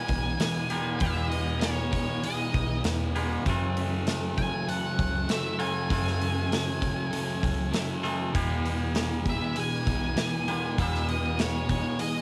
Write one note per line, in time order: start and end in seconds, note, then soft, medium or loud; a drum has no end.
0.00 0.38 E2 medium
0.00 0.68 E2 medium
0.00 0.10 B2 medium
0.00 0.69 B2 medium
0.00 1.01 E3 medium
0.00 0.69 G#3 medium
0.00 0.39 B3 medium
0.00 0.70 B3 medium
0.00 0.69 G#4 medium
0.00 1.04 G#5 medium
0.08 0.35 B1 medium
0.08 0.40 B2 medium
0.08 0.42 E3 medium
0.08 kick medium
0.08 open hi-hat medium
0.39 0.99 E2 medium
0.39 1.00 B2 medium
0.39 0.92 E3 medium
0.39 1.03 E3 medium
0.39 1.31 B3 medium
0.39 snare loud
0.39 open hi-hat medium
0.70 1.00 E2 medium
0.70 1.00 B2 medium
0.70 1.00 D#3 medium
0.70 1.00 G#3 medium
0.70 1.00 B3 medium
0.70 1.62 G#4 medium
0.70 0.99 G#4 medium
0.70 open hi-hat medium
0.99 1.61 E2 medium
0.99 3.13 E2 medium
0.99 2.06 E2 medium
0.99 1.63 B2 medium
0.99 3.13 B2 medium
0.99 2.57 E3 medium
0.99 1.29 E5 medium
0.99 kick loud
0.99 open hi-hat medium
1.03 1.64 E3 medium
1.03 3.14 G#3 medium
1.03 3.14 B3 medium
1.03 3.14 G#4 medium
1.29 2.83 B3 medium
1.29 1.60 D#5 medium
1.29 open hi-hat medium
1.61 2.22 E2 medium
1.61 2.24 B2 medium
1.61 2.26 E3 medium
1.61 2.23 G#4 medium
1.61 1.91 C#5 medium
1.61 snare loud
1.61 open hi-hat medium
1.92 2.53 D#4 medium
1.92 2.24 C#5 medium
1.92 kick medium
1.92 open hi-hat medium
2.23 2.82 E2 medium
2.23 2.55 B2 medium
2.23 2.52 E3 loud
2.23 3.15 G#4 medium
2.23 2.81 D#5 medium
2.23 open hi-hat medium
2.52 2.80 B1 loud
2.52 2.84 B2 medium
2.52 2.86 E3 medium
2.52 3.46 D#4 medium
2.52 kick medium
2.52 open hi-hat medium
2.83 3.43 E2 medium
2.83 3.36 E2 medium
2.83 3.44 B2 medium
2.83 3.47 E3 medium
2.83 3.45 B3 medium
2.83 snare loud
2.83 open hi-hat medium
3.15 3.45 E2 medium
3.15 3.45 B2 medium
3.15 3.45 D#3 medium
3.15 3.44 G#3 medium
3.15 3.44 B3 medium
3.15 3.44 G#4 medium
3.15 3.46 G#4 medium
3.15 open hi-hat soft
3.45 4.06 F#2 medium
3.45 5.58 F#2 medium
3.45 4.50 F#2 medium
3.45 4.07 C#3 medium
3.45 5.58 C#3 medium
3.45 5.89 E3 medium
3.45 5.60 E3 medium
3.45 4.09 F#3 medium
3.45 5.59 A3 medium
3.45 kick loud
3.45 open hi-hat medium
3.49 5.59 C#4 medium
3.49 5.58 F#4 medium
3.77 5.28 A3 medium
3.77 open hi-hat soft
4.07 4.66 F#2 medium
4.07 4.68 C#3 medium
4.07 4.69 F#3 medium
4.07 4.68 A4 medium
4.07 snare loud
4.07 open hi-hat medium
4.38 4.98 C#4 medium
4.38 4.69 G#5 medium
4.38 kick medium
4.38 open hi-hat soft
4.67 5.28 F#2 medium
4.67 5.00 C#3 medium
4.67 4.97 F#3 loud
4.67 5.58 A4 medium
4.67 5.31 F#5 medium
4.67 open hi-hat medium
4.98 5.25 C#2 medium
4.98 5.29 C#3 medium
4.98 5.31 F#3 medium
4.98 6.51 C#4 medium
4.98 kick medium
4.98 open hi-hat soft
5.29 5.88 F#2 medium
5.29 5.90 C#3 medium
5.29 5.82 F#3 medium
5.29 5.91 F#3 medium
5.29 6.19 A3 medium
5.29 5.61 E5 medium
5.29 snare medium
5.29 open hi-hat medium
5.59 5.89 F#2 medium
5.59 5.89 C#3 medium
5.59 5.91 E3 medium
5.59 5.88 A3 medium
5.59 5.88 C#4 medium
5.59 5.88 F#4 medium
5.59 6.50 A4 medium
5.59 8.00 G#5 medium
5.59 open hi-hat soft
5.90 6.49 F#2 medium
5.90 8.02 F#2 medium
5.90 6.95 F#2 medium
5.90 8.02 C#3 medium
5.90 6.51 C#3 medium
5.90 9.40 E3 medium
5.90 8.05 E3 medium
5.90 6.52 F#3 medium
5.90 8.03 A3 medium
5.90 8.03 C#4 medium
5.90 8.02 F#4 medium
5.90 kick loud
5.90 open hi-hat medium
6.07 snare soft
6.20 7.72 A3 medium
6.20 open hi-hat soft
6.50 7.09 F#2 medium
6.50 7.12 C#3 medium
6.50 7.13 F#3 medium
6.50 7.10 A4 medium
6.50 snare medium
6.50 open hi-hat medium
6.81 7.40 C#4 medium
6.81 kick medium
6.81 open hi-hat medium
7.11 7.71 F#2 medium
7.11 7.44 C#3 medium
7.11 7.41 F#3 medium
7.11 8.03 A4 medium
7.11 open hi-hat medium
7.42 7.69 C#2 medium
7.42 7.72 C#3 medium
7.42 7.74 F#3 medium
7.42 8.34 C#4 medium
7.42 kick medium
7.42 open hi-hat medium
7.72 8.32 F#2 medium
7.72 8.32 C#3 medium
7.72 8.26 F#3 medium
7.72 8.33 F#3 medium
7.72 8.34 A3 medium
7.72 snare loud
7.72 open hi-hat medium
8.03 8.32 F#2 medium
8.03 8.33 C#3 medium
8.03 10.50 E3 medium
8.03 8.33 A3 medium
8.03 8.32 C#4 medium
8.03 8.32 F#4 medium
8.03 8.34 A4 medium
8.03 open hi-hat soft
8.33 10.45 E2 medium
8.33 8.93 E2 medium
8.33 9.39 E2 medium
8.33 10.46 B2 medium
8.33 8.94 B2 medium
8.33 8.96 E3 loud
8.33 10.47 G#3 medium
8.33 10.47 B3 medium
8.33 10.47 G#4 medium
8.33 kick loud
8.33 open hi-hat medium
8.65 10.16 B3 medium
8.65 open hi-hat soft
8.94 9.54 E2 medium
8.94 9.55 B2 medium
8.94 9.57 E3 medium
8.94 9.55 G#4 medium
8.94 snare loud
8.94 open hi-hat medium
9.25 kick medium
9.25 open hi-hat soft
9.30 9.59 E5 medium
9.55 10.15 E2 medium
9.55 9.87 B2 medium
9.55 9.85 E3 medium
9.55 10.47 G#4 medium
9.55 open hi-hat medium
9.60 10.84 G#5 medium
9.85 10.13 B1 medium
9.85 10.16 B2 medium
9.85 10.18 E3 medium
9.85 kick medium
9.85 open hi-hat soft
10.16 10.77 E2 medium
10.16 10.78 B2 medium
10.16 10.69 E3 medium
10.16 10.81 E3 medium
10.16 11.08 B3 medium
10.16 snare loud
10.16 open hi-hat medium
10.48 10.78 E2 medium
10.48 10.78 B2 medium
10.48 10.78 D#3 medium
10.48 10.77 G#3 medium
10.48 10.77 B3 medium
10.48 10.77 G#4 medium
10.48 11.38 G#4 medium
10.48 open hi-hat soft
10.78 11.37 E2 medium
10.78 11.83 E2 medium
10.78 12.22 E2 medium
10.78 11.39 B2 medium
10.78 12.22 B2 medium
10.78 11.41 E3 loud
10.78 12.22 G#3 medium
10.78 12.22 B3 medium
10.78 12.22 G#4 medium
10.78 11.08 E5 medium
10.78 kick loud
10.78 open hi-hat medium
10.95 snare soft
11.09 12.22 B3 medium
11.09 11.40 D#5 medium
11.09 open hi-hat medium
11.38 11.98 E2 medium
11.38 11.99 B2 medium
11.38 12.02 E3 medium
11.38 11.99 G#4 medium
11.38 11.69 C#5 medium
11.38 snare loud
11.38 open hi-hat medium
11.69 12.22 D#4 medium
11.69 12.00 C#5 medium
11.69 kick medium
11.69 open hi-hat medium
11.99 12.22 E2 medium
11.99 12.22 B2 medium
11.99 12.22 E3 loud
11.99 12.22 G#4 medium
11.99 12.22 D#5 medium
11.99 open hi-hat medium